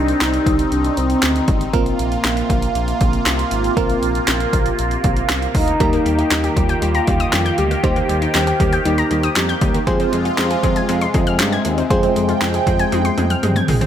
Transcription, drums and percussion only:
0.08 closed hi-hat
0.21 snare, clap, closed hi-hat
0.34 closed hi-hat
0.46 kick, closed hi-hat
0.59 closed hi-hat
0.72 closed hi-hat
0.84 closed hi-hat
0.97 closed hi-hat
1.10 closed hi-hat
1.23 snare, clap, closed hi-hat
1.36 closed hi-hat
1.48 kick, closed hi-hat
1.61 closed hi-hat
1.73 kick, closed hi-hat
1.86 closed hi-hat
1.99 closed hi-hat
2.12 closed hi-hat
2.24 snare, clap, closed hi-hat
2.37 closed hi-hat
2.50 kick, closed hi-hat
2.62 closed hi-hat
2.75 closed hi-hat
2.88 closed hi-hat
3.01 kick, closed hi-hat
3.13 closed hi-hat
3.26 snare, clap, closed hi-hat
3.39 closed hi-hat
3.51 closed hi-hat
3.64 closed hi-hat
3.77 kick, closed hi-hat
3.90 closed hi-hat
4.03 closed hi-hat
4.15 closed hi-hat
4.28 snare, clap, closed hi-hat
4.40 closed hi-hat
4.53 kick, closed hi-hat
4.66 closed hi-hat
4.79 closed hi-hat
4.91 closed hi-hat
5.04 kick, closed hi-hat
5.17 closed hi-hat
5.29 snare, clap, closed hi-hat
5.42 closed hi-hat
5.55 kick, open hi-hat
5.68 closed hi-hat
5.80 kick, closed hi-hat
5.93 closed hi-hat
6.06 closed hi-hat
6.19 closed hi-hat
6.31 snare, clap, closed hi-hat
6.44 closed hi-hat
6.57 kick, closed hi-hat
6.69 closed hi-hat
6.82 closed hi-hat
6.95 closed hi-hat
7.07 kick, closed hi-hat
7.20 closed hi-hat
7.33 snare, clap, closed hi-hat
7.46 closed hi-hat
7.58 closed hi-hat
7.71 closed hi-hat
7.84 kick, closed hi-hat
7.96 closed hi-hat
8.09 closed hi-hat
8.22 closed hi-hat
8.34 snare, clap, closed hi-hat
8.47 closed hi-hat
8.60 kick, closed hi-hat
8.73 closed hi-hat
8.85 closed hi-hat
8.98 closed hi-hat
9.11 closed hi-hat
9.23 closed hi-hat
9.36 snare, clap, closed hi-hat
9.49 closed hi-hat
9.61 kick, closed hi-hat
9.74 closed hi-hat
9.87 kick, closed hi-hat
10.00 closed hi-hat
10.13 closed hi-hat
10.25 closed hi-hat
10.38 snare, clap, closed hi-hat
10.51 closed hi-hat
10.63 kick, closed hi-hat
10.76 closed hi-hat
10.89 closed hi-hat
11.01 closed hi-hat
11.14 kick, closed hi-hat
11.27 closed hi-hat
11.40 snare, clap, closed hi-hat
11.53 closed hi-hat
11.65 closed hi-hat
11.78 closed hi-hat
11.90 kick, closed hi-hat
12.03 closed hi-hat
12.16 closed hi-hat
12.29 closed hi-hat
12.41 snare, clap, closed hi-hat
12.54 closed hi-hat
12.67 kick, closed hi-hat
12.79 closed hi-hat
12.92 closed hi-hat, high tom
13.05 closed hi-hat
13.18 closed hi-hat, mid tom
13.30 closed hi-hat
13.43 closed hi-hat, mid tom
13.56 closed hi-hat, mid tom
13.68 floor tom, open hi-hat
13.81 closed hi-hat, floor tom

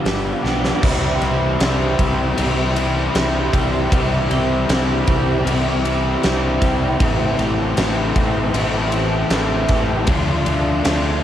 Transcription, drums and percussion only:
0.05 snare, open hi-hat
0.45 snare
0.65 snare
0.83 kick, crash
1.22 snare, ride
1.60 snare, ride
1.99 kick, ride
2.38 ride
2.76 ride
3.15 snare, ride
3.53 kick, ride
3.92 kick, ride
4.31 snare, ride
4.69 snare, ride
5.07 kick, ride
5.47 ride
5.85 ride
6.23 snare, ride
6.62 kick, snare, ride
7.00 kick, ride
7.39 snare, ride
7.77 snare, ride
8.16 kick, ride
8.54 ride
8.92 ride
9.30 snare, ride
9.69 kick, snare, ride
10.07 kick, ride
10.46 ride
10.85 snare, ride

